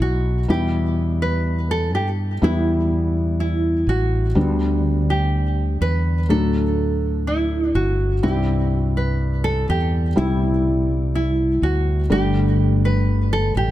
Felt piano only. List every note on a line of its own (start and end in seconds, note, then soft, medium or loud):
0.00 0.39 F#3 medium
0.00 0.39 B3 medium
0.00 0.40 D#5 medium
0.48 1.90 B2 medium
0.48 2.32 G3 medium
0.48 2.33 B3 medium
0.48 2.33 E4 medium
2.42 4.26 G3 medium
2.42 4.26 B3 medium
2.42 4.27 E4 medium
4.35 5.77 D3 medium
4.35 6.19 G3 medium
4.35 6.20 B3 medium
4.35 6.20 D4 medium
6.29 7.71 A2 medium
6.29 8.13 F#3 medium
6.29 8.13 A3 medium
6.29 8.14 D4 medium
8.23 9.64 G2 medium
8.23 10.07 G3 medium
8.23 10.07 C4 medium
8.23 10.07 E4 medium
10.16 12.00 G3 medium
10.16 12.00 C4 medium
10.16 12.01 E4 medium
12.10 13.51 G2 medium
12.10 13.51 D3 medium
12.10 13.71 G3 medium
12.10 13.71 A3 medium
12.10 13.71 D4 medium